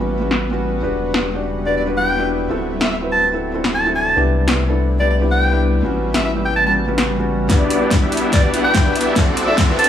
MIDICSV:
0, 0, Header, 1, 8, 480
1, 0, Start_track
1, 0, Key_signature, 1, "minor"
1, 0, Tempo, 416667
1, 957, Time_signature, 4, 2, 24, 8
1, 11391, End_track
2, 0, Start_track
2, 0, Title_t, "Alto saxophone"
2, 0, Program_c, 0, 65
2, 1917, Note_on_c, 0, 74, 78
2, 1994, Note_off_c, 0, 74, 0
2, 2037, Note_on_c, 0, 74, 68
2, 2113, Note_off_c, 0, 74, 0
2, 2273, Note_on_c, 0, 79, 85
2, 2635, Note_off_c, 0, 79, 0
2, 3235, Note_on_c, 0, 76, 81
2, 3313, Note_off_c, 0, 76, 0
2, 3354, Note_on_c, 0, 76, 69
2, 3433, Note_off_c, 0, 76, 0
2, 3595, Note_on_c, 0, 81, 83
2, 3761, Note_off_c, 0, 81, 0
2, 4314, Note_on_c, 0, 81, 84
2, 4481, Note_off_c, 0, 81, 0
2, 4556, Note_on_c, 0, 81, 82
2, 4845, Note_off_c, 0, 81, 0
2, 5757, Note_on_c, 0, 74, 83
2, 5834, Note_off_c, 0, 74, 0
2, 5876, Note_on_c, 0, 74, 70
2, 5953, Note_off_c, 0, 74, 0
2, 6120, Note_on_c, 0, 79, 85
2, 6478, Note_off_c, 0, 79, 0
2, 7076, Note_on_c, 0, 76, 81
2, 7153, Note_off_c, 0, 76, 0
2, 7197, Note_on_c, 0, 76, 70
2, 7275, Note_off_c, 0, 76, 0
2, 7437, Note_on_c, 0, 79, 84
2, 7534, Note_off_c, 0, 79, 0
2, 7560, Note_on_c, 0, 81, 80
2, 7635, Note_off_c, 0, 81, 0
2, 7678, Note_on_c, 0, 81, 72
2, 7755, Note_off_c, 0, 81, 0
2, 9597, Note_on_c, 0, 74, 84
2, 9674, Note_off_c, 0, 74, 0
2, 9717, Note_on_c, 0, 74, 74
2, 9793, Note_off_c, 0, 74, 0
2, 9957, Note_on_c, 0, 79, 88
2, 10317, Note_off_c, 0, 79, 0
2, 10917, Note_on_c, 0, 76, 83
2, 10993, Note_off_c, 0, 76, 0
2, 11035, Note_on_c, 0, 76, 74
2, 11113, Note_off_c, 0, 76, 0
2, 11278, Note_on_c, 0, 81, 90
2, 11391, Note_off_c, 0, 81, 0
2, 11391, End_track
3, 0, Start_track
3, 0, Title_t, "Felt piano"
3, 0, Program_c, 1, 0
3, 0, Note_on_c, 1, 55, 71
3, 0, Note_on_c, 1, 59, 65
3, 0, Note_on_c, 1, 61, 68
3, 7, Note_on_c, 1, 66, 79
3, 195, Note_off_c, 1, 55, 0
3, 199, Note_off_c, 1, 59, 0
3, 202, Note_off_c, 1, 61, 0
3, 206, Note_off_c, 1, 66, 0
3, 223, Note_on_c, 1, 55, 77
3, 231, Note_on_c, 1, 59, 69
3, 239, Note_on_c, 1, 61, 69
3, 246, Note_on_c, 1, 66, 86
3, 562, Note_off_c, 1, 55, 0
3, 566, Note_off_c, 1, 59, 0
3, 570, Note_off_c, 1, 61, 0
3, 573, Note_off_c, 1, 66, 0
3, 582, Note_on_c, 1, 55, 75
3, 591, Note_on_c, 1, 59, 72
3, 599, Note_on_c, 1, 61, 70
3, 606, Note_on_c, 1, 66, 85
3, 920, Note_off_c, 1, 55, 0
3, 925, Note_off_c, 1, 59, 0
3, 929, Note_off_c, 1, 61, 0
3, 932, Note_off_c, 1, 66, 0
3, 943, Note_on_c, 1, 62, 82
3, 951, Note_on_c, 1, 66, 75
3, 958, Note_on_c, 1, 67, 74
3, 965, Note_on_c, 1, 71, 87
3, 1282, Note_off_c, 1, 62, 0
3, 1286, Note_off_c, 1, 66, 0
3, 1289, Note_off_c, 1, 67, 0
3, 1293, Note_off_c, 1, 71, 0
3, 1304, Note_on_c, 1, 62, 68
3, 1313, Note_on_c, 1, 66, 62
3, 1319, Note_on_c, 1, 67, 61
3, 1327, Note_on_c, 1, 71, 75
3, 1442, Note_off_c, 1, 62, 0
3, 1446, Note_off_c, 1, 66, 0
3, 1449, Note_off_c, 1, 67, 0
3, 1453, Note_off_c, 1, 71, 0
3, 1543, Note_on_c, 1, 62, 73
3, 1550, Note_on_c, 1, 66, 65
3, 1558, Note_on_c, 1, 67, 65
3, 1566, Note_on_c, 1, 74, 79
3, 1881, Note_off_c, 1, 62, 0
3, 1884, Note_off_c, 1, 66, 0
3, 1888, Note_off_c, 1, 67, 0
3, 1892, Note_off_c, 1, 74, 0
3, 1902, Note_on_c, 1, 62, 74
3, 1909, Note_on_c, 1, 66, 66
3, 1918, Note_on_c, 1, 67, 67
3, 1925, Note_on_c, 1, 71, 77
3, 2114, Note_off_c, 1, 62, 0
3, 2117, Note_off_c, 1, 66, 0
3, 2122, Note_off_c, 1, 67, 0
3, 2125, Note_off_c, 1, 71, 0
3, 2143, Note_on_c, 1, 62, 77
3, 2151, Note_on_c, 1, 66, 72
3, 2159, Note_on_c, 1, 67, 72
3, 2166, Note_on_c, 1, 71, 86
3, 2482, Note_off_c, 1, 62, 0
3, 2486, Note_off_c, 1, 66, 0
3, 2490, Note_off_c, 1, 67, 0
3, 2493, Note_off_c, 1, 71, 0
3, 2504, Note_on_c, 1, 62, 80
3, 2513, Note_on_c, 1, 66, 71
3, 2520, Note_on_c, 1, 67, 69
3, 2528, Note_on_c, 1, 71, 87
3, 2842, Note_off_c, 1, 62, 0
3, 2846, Note_off_c, 1, 66, 0
3, 2850, Note_off_c, 1, 67, 0
3, 2853, Note_off_c, 1, 71, 0
3, 2865, Note_on_c, 1, 60, 82
3, 2873, Note_on_c, 1, 64, 76
3, 2883, Note_on_c, 1, 66, 76
3, 2890, Note_on_c, 1, 69, 94
3, 3203, Note_off_c, 1, 60, 0
3, 3207, Note_off_c, 1, 64, 0
3, 3212, Note_off_c, 1, 66, 0
3, 3215, Note_off_c, 1, 69, 0
3, 3227, Note_on_c, 1, 60, 69
3, 3235, Note_on_c, 1, 64, 63
3, 3240, Note_on_c, 1, 66, 65
3, 3248, Note_on_c, 1, 69, 78
3, 3363, Note_off_c, 1, 60, 0
3, 3367, Note_off_c, 1, 64, 0
3, 3370, Note_off_c, 1, 66, 0
3, 3373, Note_off_c, 1, 69, 0
3, 3465, Note_on_c, 1, 60, 75
3, 3474, Note_on_c, 1, 64, 66
3, 3482, Note_on_c, 1, 66, 69
3, 3490, Note_on_c, 1, 71, 81
3, 3802, Note_off_c, 1, 60, 0
3, 3807, Note_off_c, 1, 64, 0
3, 3810, Note_off_c, 1, 66, 0
3, 3814, Note_off_c, 1, 71, 0
3, 3825, Note_on_c, 1, 60, 76
3, 3833, Note_on_c, 1, 64, 67
3, 3839, Note_on_c, 1, 66, 65
3, 3848, Note_on_c, 1, 69, 81
3, 4035, Note_off_c, 1, 60, 0
3, 4039, Note_off_c, 1, 64, 0
3, 4042, Note_off_c, 1, 66, 0
3, 4047, Note_off_c, 1, 69, 0
3, 4067, Note_on_c, 1, 60, 78
3, 4074, Note_on_c, 1, 64, 72
3, 4082, Note_on_c, 1, 66, 72
3, 4091, Note_on_c, 1, 69, 87
3, 4404, Note_off_c, 1, 60, 0
3, 4407, Note_off_c, 1, 64, 0
3, 4411, Note_off_c, 1, 66, 0
3, 4416, Note_off_c, 1, 69, 0
3, 4429, Note_on_c, 1, 60, 80
3, 4435, Note_on_c, 1, 64, 73
3, 4444, Note_on_c, 1, 66, 74
3, 4451, Note_on_c, 1, 69, 88
3, 4764, Note_off_c, 1, 60, 0
3, 4767, Note_off_c, 1, 64, 0
3, 4771, Note_off_c, 1, 66, 0
3, 4775, Note_off_c, 1, 69, 0
3, 4786, Note_on_c, 1, 59, 85
3, 4795, Note_on_c, 1, 62, 79
3, 4801, Note_on_c, 1, 64, 77
3, 4809, Note_on_c, 1, 67, 96
3, 5123, Note_off_c, 1, 59, 0
3, 5128, Note_off_c, 1, 62, 0
3, 5131, Note_off_c, 1, 64, 0
3, 5135, Note_off_c, 1, 67, 0
3, 5149, Note_on_c, 1, 59, 71
3, 5156, Note_on_c, 1, 62, 63
3, 5165, Note_on_c, 1, 64, 65
3, 5170, Note_on_c, 1, 67, 78
3, 5284, Note_off_c, 1, 59, 0
3, 5288, Note_off_c, 1, 62, 0
3, 5292, Note_off_c, 1, 64, 0
3, 5295, Note_off_c, 1, 67, 0
3, 5388, Note_on_c, 1, 59, 74
3, 5396, Note_on_c, 1, 62, 67
3, 5404, Note_on_c, 1, 64, 67
3, 5410, Note_on_c, 1, 69, 81
3, 5723, Note_off_c, 1, 59, 0
3, 5728, Note_off_c, 1, 62, 0
3, 5731, Note_off_c, 1, 64, 0
3, 5735, Note_off_c, 1, 69, 0
3, 5748, Note_on_c, 1, 59, 73
3, 5756, Note_on_c, 1, 62, 67
3, 5763, Note_on_c, 1, 64, 67
3, 5772, Note_on_c, 1, 67, 84
3, 5957, Note_off_c, 1, 59, 0
3, 5961, Note_off_c, 1, 62, 0
3, 5964, Note_off_c, 1, 64, 0
3, 5969, Note_off_c, 1, 67, 0
3, 5988, Note_on_c, 1, 59, 81
3, 5997, Note_on_c, 1, 62, 74
3, 6005, Note_on_c, 1, 64, 74
3, 6011, Note_on_c, 1, 67, 90
3, 6324, Note_off_c, 1, 59, 0
3, 6329, Note_off_c, 1, 62, 0
3, 6333, Note_off_c, 1, 64, 0
3, 6336, Note_off_c, 1, 67, 0
3, 6347, Note_on_c, 1, 59, 83
3, 6354, Note_on_c, 1, 62, 72
3, 6362, Note_on_c, 1, 64, 74
3, 6370, Note_on_c, 1, 67, 86
3, 6683, Note_off_c, 1, 59, 0
3, 6687, Note_off_c, 1, 62, 0
3, 6691, Note_off_c, 1, 64, 0
3, 6694, Note_off_c, 1, 67, 0
3, 6706, Note_on_c, 1, 55, 83
3, 6716, Note_on_c, 1, 59, 77
3, 6722, Note_on_c, 1, 61, 76
3, 6731, Note_on_c, 1, 66, 90
3, 7044, Note_off_c, 1, 55, 0
3, 7048, Note_off_c, 1, 59, 0
3, 7051, Note_off_c, 1, 61, 0
3, 7056, Note_off_c, 1, 66, 0
3, 7072, Note_on_c, 1, 55, 71
3, 7079, Note_on_c, 1, 59, 67
3, 7087, Note_on_c, 1, 61, 65
3, 7095, Note_on_c, 1, 66, 77
3, 7206, Note_off_c, 1, 55, 0
3, 7209, Note_off_c, 1, 59, 0
3, 7213, Note_off_c, 1, 61, 0
3, 7217, Note_off_c, 1, 66, 0
3, 7313, Note_on_c, 1, 55, 75
3, 7319, Note_on_c, 1, 59, 69
3, 7328, Note_on_c, 1, 61, 68
3, 7335, Note_on_c, 1, 67, 84
3, 7646, Note_off_c, 1, 55, 0
3, 7649, Note_off_c, 1, 59, 0
3, 7653, Note_off_c, 1, 61, 0
3, 7657, Note_off_c, 1, 67, 0
3, 7667, Note_on_c, 1, 55, 74
3, 7674, Note_on_c, 1, 59, 68
3, 7683, Note_on_c, 1, 61, 68
3, 7690, Note_on_c, 1, 66, 81
3, 7876, Note_off_c, 1, 55, 0
3, 7880, Note_off_c, 1, 59, 0
3, 7884, Note_off_c, 1, 61, 0
3, 7888, Note_off_c, 1, 66, 0
3, 7907, Note_on_c, 1, 55, 81
3, 7915, Note_on_c, 1, 59, 74
3, 7923, Note_on_c, 1, 61, 74
3, 7929, Note_on_c, 1, 66, 88
3, 8244, Note_off_c, 1, 55, 0
3, 8248, Note_off_c, 1, 59, 0
3, 8252, Note_off_c, 1, 61, 0
3, 8255, Note_off_c, 1, 66, 0
3, 8267, Note_on_c, 1, 55, 80
3, 8276, Note_on_c, 1, 59, 75
3, 8282, Note_on_c, 1, 61, 74
3, 8290, Note_on_c, 1, 66, 91
3, 8603, Note_off_c, 1, 55, 0
3, 8607, Note_off_c, 1, 59, 0
3, 8611, Note_off_c, 1, 61, 0
3, 8614, Note_off_c, 1, 66, 0
3, 8628, Note_on_c, 1, 62, 84
3, 8636, Note_on_c, 1, 66, 80
3, 8643, Note_on_c, 1, 67, 75
3, 8650, Note_on_c, 1, 71, 92
3, 8964, Note_off_c, 1, 62, 0
3, 8968, Note_off_c, 1, 66, 0
3, 8972, Note_off_c, 1, 67, 0
3, 8975, Note_off_c, 1, 71, 0
3, 8990, Note_on_c, 1, 62, 70
3, 8998, Note_on_c, 1, 66, 68
3, 9007, Note_on_c, 1, 67, 66
3, 9014, Note_on_c, 1, 71, 79
3, 9124, Note_off_c, 1, 62, 0
3, 9129, Note_off_c, 1, 66, 0
3, 9133, Note_off_c, 1, 67, 0
3, 9137, Note_off_c, 1, 71, 0
3, 9232, Note_on_c, 1, 62, 75
3, 9239, Note_on_c, 1, 66, 69
3, 9246, Note_on_c, 1, 67, 70
3, 9255, Note_on_c, 1, 74, 86
3, 9565, Note_off_c, 1, 62, 0
3, 9569, Note_off_c, 1, 66, 0
3, 9572, Note_off_c, 1, 67, 0
3, 9577, Note_off_c, 1, 74, 0
3, 9588, Note_on_c, 1, 62, 75
3, 9594, Note_on_c, 1, 66, 69
3, 9603, Note_on_c, 1, 67, 68
3, 9611, Note_on_c, 1, 71, 85
3, 9797, Note_off_c, 1, 62, 0
3, 9799, Note_off_c, 1, 66, 0
3, 9804, Note_off_c, 1, 67, 0
3, 9808, Note_off_c, 1, 71, 0
3, 9827, Note_on_c, 1, 62, 81
3, 9836, Note_on_c, 1, 66, 75
3, 9842, Note_on_c, 1, 67, 76
3, 9850, Note_on_c, 1, 71, 90
3, 10164, Note_off_c, 1, 62, 0
3, 10168, Note_off_c, 1, 66, 0
3, 10172, Note_off_c, 1, 67, 0
3, 10175, Note_off_c, 1, 71, 0
3, 10187, Note_on_c, 1, 62, 83
3, 10194, Note_on_c, 1, 66, 76
3, 10203, Note_on_c, 1, 67, 76
3, 10210, Note_on_c, 1, 71, 92
3, 10523, Note_off_c, 1, 62, 0
3, 10527, Note_off_c, 1, 66, 0
3, 10531, Note_off_c, 1, 67, 0
3, 10534, Note_off_c, 1, 71, 0
3, 10546, Note_on_c, 1, 60, 89
3, 10554, Note_on_c, 1, 64, 79
3, 10562, Note_on_c, 1, 66, 82
3, 10571, Note_on_c, 1, 69, 97
3, 10884, Note_off_c, 1, 60, 0
3, 10888, Note_off_c, 1, 64, 0
3, 10892, Note_off_c, 1, 66, 0
3, 10896, Note_off_c, 1, 69, 0
3, 10907, Note_on_c, 1, 60, 75
3, 10915, Note_on_c, 1, 64, 69
3, 10922, Note_on_c, 1, 66, 68
3, 10929, Note_on_c, 1, 69, 81
3, 11043, Note_off_c, 1, 60, 0
3, 11047, Note_off_c, 1, 64, 0
3, 11051, Note_off_c, 1, 66, 0
3, 11054, Note_off_c, 1, 69, 0
3, 11147, Note_on_c, 1, 60, 76
3, 11155, Note_on_c, 1, 64, 72
3, 11163, Note_on_c, 1, 66, 69
3, 11170, Note_on_c, 1, 71, 86
3, 11391, Note_off_c, 1, 60, 0
3, 11391, Note_off_c, 1, 64, 0
3, 11391, Note_off_c, 1, 66, 0
3, 11391, Note_off_c, 1, 71, 0
3, 11391, End_track
4, 0, Start_track
4, 0, Title_t, "Supersaw synth"
4, 0, Program_c, 2, 81
4, 8636, Note_on_c, 2, 59, 80
4, 8636, Note_on_c, 2, 67, 74
4, 8637, Note_on_c, 2, 62, 73
4, 8637, Note_on_c, 2, 64, 72
4, 8637, Note_on_c, 2, 74, 88
4, 9208, Note_off_c, 2, 59, 0
4, 9209, Note_off_c, 2, 62, 0
4, 9209, Note_off_c, 2, 64, 0
4, 9209, Note_off_c, 2, 67, 0
4, 9209, Note_off_c, 2, 74, 0
4, 9238, Note_on_c, 2, 59, 75
4, 9238, Note_on_c, 2, 62, 66
4, 9238, Note_on_c, 2, 64, 67
4, 9238, Note_on_c, 2, 67, 68
4, 9238, Note_on_c, 2, 76, 82
4, 9568, Note_off_c, 2, 62, 0
4, 9568, Note_off_c, 2, 64, 0
4, 9568, Note_off_c, 2, 67, 0
4, 9569, Note_off_c, 2, 59, 0
4, 9569, Note_off_c, 2, 76, 0
4, 9596, Note_on_c, 2, 67, 71
4, 9597, Note_on_c, 2, 74, 85
4, 9598, Note_on_c, 2, 59, 77
4, 9598, Note_on_c, 2, 62, 71
4, 9598, Note_on_c, 2, 64, 70
4, 9808, Note_off_c, 2, 67, 0
4, 9808, Note_off_c, 2, 74, 0
4, 9809, Note_off_c, 2, 59, 0
4, 9809, Note_off_c, 2, 62, 0
4, 9809, Note_off_c, 2, 64, 0
4, 9835, Note_on_c, 2, 78, 80
4, 9836, Note_on_c, 2, 59, 71
4, 9836, Note_on_c, 2, 62, 66
4, 9836, Note_on_c, 2, 64, 65
4, 9837, Note_on_c, 2, 67, 66
4, 10047, Note_off_c, 2, 78, 0
4, 10048, Note_off_c, 2, 59, 0
4, 10048, Note_off_c, 2, 62, 0
4, 10048, Note_off_c, 2, 64, 0
4, 10048, Note_off_c, 2, 67, 0
4, 10076, Note_on_c, 2, 59, 81
4, 10076, Note_on_c, 2, 67, 76
4, 10076, Note_on_c, 2, 76, 89
4, 10077, Note_on_c, 2, 62, 74
4, 10077, Note_on_c, 2, 64, 72
4, 10528, Note_off_c, 2, 59, 0
4, 10528, Note_off_c, 2, 62, 0
4, 10528, Note_off_c, 2, 64, 0
4, 10528, Note_off_c, 2, 67, 0
4, 10528, Note_off_c, 2, 76, 0
4, 10556, Note_on_c, 2, 62, 76
4, 10556, Note_on_c, 2, 66, 74
4, 10557, Note_on_c, 2, 60, 80
4, 10557, Note_on_c, 2, 69, 74
4, 10557, Note_on_c, 2, 74, 90
4, 11128, Note_off_c, 2, 66, 0
4, 11129, Note_off_c, 2, 60, 0
4, 11129, Note_off_c, 2, 62, 0
4, 11129, Note_off_c, 2, 69, 0
4, 11129, Note_off_c, 2, 74, 0
4, 11157, Note_on_c, 2, 76, 81
4, 11158, Note_on_c, 2, 62, 66
4, 11158, Note_on_c, 2, 66, 69
4, 11159, Note_on_c, 2, 60, 77
4, 11159, Note_on_c, 2, 69, 68
4, 11391, Note_off_c, 2, 60, 0
4, 11391, Note_off_c, 2, 62, 0
4, 11391, Note_off_c, 2, 66, 0
4, 11391, Note_off_c, 2, 69, 0
4, 11391, Note_off_c, 2, 76, 0
4, 11391, End_track
5, 0, Start_track
5, 0, Title_t, "Ambient pad"
5, 0, Program_c, 3, 92
5, 0, Note_on_c, 3, 49, 79
5, 0, Note_on_c, 3, 55, 72
5, 0, Note_on_c, 3, 59, 73
5, 0, Note_on_c, 3, 66, 88
5, 935, Note_off_c, 3, 49, 0
5, 935, Note_off_c, 3, 59, 0
5, 935, Note_off_c, 3, 66, 0
5, 956, Note_on_c, 3, 50, 78
5, 956, Note_on_c, 3, 59, 75
5, 957, Note_on_c, 3, 64, 90
5, 2829, Note_off_c, 3, 55, 0
5, 2857, Note_off_c, 3, 50, 0
5, 2857, Note_off_c, 3, 59, 0
5, 2858, Note_off_c, 3, 64, 0
5, 2877, Note_on_c, 3, 54, 71
5, 2877, Note_on_c, 3, 62, 89
5, 2878, Note_on_c, 3, 57, 72
5, 2879, Note_on_c, 3, 48, 78
5, 4777, Note_off_c, 3, 54, 0
5, 4778, Note_off_c, 3, 57, 0
5, 4778, Note_off_c, 3, 62, 0
5, 4797, Note_on_c, 3, 55, 73
5, 4797, Note_on_c, 3, 59, 74
5, 4797, Note_on_c, 3, 64, 87
5, 6679, Note_off_c, 3, 48, 0
5, 6698, Note_off_c, 3, 59, 0
5, 6698, Note_off_c, 3, 64, 0
5, 6718, Note_on_c, 3, 49, 78
5, 6718, Note_on_c, 3, 59, 74
5, 6718, Note_on_c, 3, 66, 89
5, 8599, Note_off_c, 3, 55, 0
5, 8618, Note_off_c, 3, 49, 0
5, 8618, Note_off_c, 3, 59, 0
5, 8618, Note_off_c, 3, 66, 0
5, 8632, Note_on_c, 3, 64, 74
5, 8633, Note_on_c, 3, 50, 80
5, 8633, Note_on_c, 3, 59, 72
5, 8633, Note_on_c, 3, 67, 92
5, 10535, Note_off_c, 3, 64, 0
5, 10535, Note_off_c, 3, 67, 0
5, 10536, Note_off_c, 3, 59, 0
5, 10557, Note_on_c, 3, 60, 77
5, 10557, Note_on_c, 3, 66, 75
5, 10557, Note_on_c, 3, 69, 90
5, 11391, Note_off_c, 3, 50, 0
5, 11391, Note_off_c, 3, 60, 0
5, 11391, Note_off_c, 3, 66, 0
5, 11391, Note_off_c, 3, 69, 0
5, 11391, End_track
6, 0, Start_track
6, 0, Title_t, "Sub bass"
6, 0, Program_c, 4, 38
6, 0, Note_on_c, 4, 33, 85
6, 933, Note_off_c, 4, 33, 0
6, 957, Note_on_c, 4, 28, 85
6, 2853, Note_off_c, 4, 28, 0
6, 2877, Note_on_c, 4, 26, 84
6, 4773, Note_off_c, 4, 26, 0
6, 4797, Note_on_c, 4, 36, 84
6, 6693, Note_off_c, 4, 36, 0
6, 6719, Note_on_c, 4, 33, 82
6, 8614, Note_off_c, 4, 33, 0
6, 11391, End_track
7, 0, Start_track
7, 0, Title_t, "Riser"
7, 0, Program_c, 5, 103
7, 8636, Note_on_c, 5, 60, 76
7, 11391, Note_off_c, 5, 60, 0
7, 11391, End_track
8, 0, Start_track
8, 0, Title_t, "Drums"
8, 356, Note_on_c, 9, 40, 51
8, 471, Note_off_c, 9, 40, 0
8, 1316, Note_on_c, 9, 40, 74
8, 1431, Note_off_c, 9, 40, 0
8, 3236, Note_on_c, 9, 40, 76
8, 3351, Note_off_c, 9, 40, 0
8, 4196, Note_on_c, 9, 40, 56
8, 4311, Note_off_c, 9, 40, 0
8, 5157, Note_on_c, 9, 40, 77
8, 5272, Note_off_c, 9, 40, 0
8, 7077, Note_on_c, 9, 40, 75
8, 7192, Note_off_c, 9, 40, 0
8, 8039, Note_on_c, 9, 40, 58
8, 8154, Note_off_c, 9, 40, 0
8, 8635, Note_on_c, 9, 36, 90
8, 8636, Note_on_c, 9, 38, 45
8, 8636, Note_on_c, 9, 42, 75
8, 8750, Note_off_c, 9, 36, 0
8, 8751, Note_off_c, 9, 38, 0
8, 8751, Note_off_c, 9, 42, 0
8, 8875, Note_on_c, 9, 42, 66
8, 8991, Note_off_c, 9, 42, 0
8, 9115, Note_on_c, 9, 36, 88
8, 9115, Note_on_c, 9, 38, 47
8, 9115, Note_on_c, 9, 42, 75
8, 9230, Note_off_c, 9, 36, 0
8, 9230, Note_off_c, 9, 38, 0
8, 9230, Note_off_c, 9, 42, 0
8, 9355, Note_on_c, 9, 42, 46
8, 9414, Note_off_c, 9, 42, 0
8, 9414, Note_on_c, 9, 42, 60
8, 9529, Note_off_c, 9, 42, 0
8, 9594, Note_on_c, 9, 38, 51
8, 9594, Note_on_c, 9, 42, 74
8, 9595, Note_on_c, 9, 36, 92
8, 9709, Note_off_c, 9, 38, 0
8, 9709, Note_off_c, 9, 42, 0
8, 9710, Note_off_c, 9, 36, 0
8, 9834, Note_on_c, 9, 42, 64
8, 9949, Note_off_c, 9, 42, 0
8, 10075, Note_on_c, 9, 36, 94
8, 10075, Note_on_c, 9, 38, 53
8, 10075, Note_on_c, 9, 42, 77
8, 10190, Note_off_c, 9, 36, 0
8, 10190, Note_off_c, 9, 38, 0
8, 10190, Note_off_c, 9, 42, 0
8, 10316, Note_on_c, 9, 42, 49
8, 10376, Note_off_c, 9, 42, 0
8, 10376, Note_on_c, 9, 42, 65
8, 10491, Note_off_c, 9, 42, 0
8, 10554, Note_on_c, 9, 38, 56
8, 10554, Note_on_c, 9, 42, 76
8, 10555, Note_on_c, 9, 36, 90
8, 10670, Note_off_c, 9, 36, 0
8, 10670, Note_off_c, 9, 38, 0
8, 10670, Note_off_c, 9, 42, 0
8, 10794, Note_on_c, 9, 42, 64
8, 10909, Note_off_c, 9, 42, 0
8, 11034, Note_on_c, 9, 38, 59
8, 11034, Note_on_c, 9, 42, 77
8, 11035, Note_on_c, 9, 36, 92
8, 11150, Note_off_c, 9, 38, 0
8, 11150, Note_off_c, 9, 42, 0
8, 11151, Note_off_c, 9, 36, 0
8, 11276, Note_on_c, 9, 42, 47
8, 11337, Note_off_c, 9, 42, 0
8, 11337, Note_on_c, 9, 42, 62
8, 11391, Note_off_c, 9, 42, 0
8, 11391, End_track
0, 0, End_of_file